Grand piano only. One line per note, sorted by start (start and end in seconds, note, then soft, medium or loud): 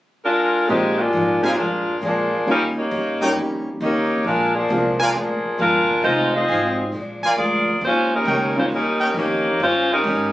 0.69 0.95 G#3 medium
0.69 0.95 A#3 soft
0.69 0.96 C4 soft
0.69 0.96 D4 soft
0.69 0.96 F4 medium
1.41 1.55 G#3 medium
1.41 1.55 A#3 soft
1.41 1.56 C4 medium
1.41 1.56 D4 medium
1.41 1.56 F4 medium
2.46 2.73 G3 medium
2.46 2.74 A#3 soft
2.46 2.73 C#4 soft
2.46 2.74 D#4 soft
2.46 2.74 F4 medium
3.21 3.78 G3 medium
3.21 3.78 A#3 soft
3.21 3.78 C#4 medium
3.21 3.78 D#4 medium
3.21 3.79 G4 medium
4.70 5.38 G#3 medium
4.70 5.39 A#3 soft
4.70 5.39 C4 soft
4.70 5.39 D4 medium
4.70 5.39 F4 medium
8.56 8.69 G3 medium
8.56 8.70 A#3 medium
8.56 8.70 C#4 medium
8.56 8.70 D#4 medium
8.56 8.70 F4 medium